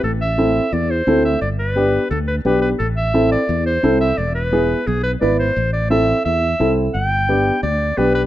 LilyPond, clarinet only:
\new Staff \with { instrumentName = "Clarinet" } { \time 4/4 \key a \minor \tempo 4 = 174 a'8 e''4. d''8 c''4 e''8 | d''8 b'4. a'8 b'8 b'8 b'8 | a'8 e''4 d''4 c''4 e''8 | d''8 b'4. gis'8 b'8 d''8 c''8~ |
c''8 d''8 e''4 e''4. r8 | g''2 d''4 b'8 b'8 | }